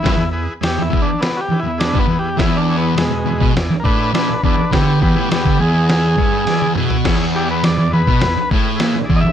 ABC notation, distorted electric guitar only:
X:1
M:4/4
L:1/16
Q:1/4=103
K:Emix
V:1 name="Distorted electric guitar" clef=bass
=G,, E,,2 z E,, E,, E,, z4 E,,2 G,, E,,2 | E,,4 E,, E,, E,, B,, E,, z A,,2 ^A,, z E,, z | D,2 E,, A,, E,, D, E,,4 =G,,2 E,,2 B,,2 | E,,4 E,, E,, E,, B,, E,, z A,,2 ^A,, z E,, z |]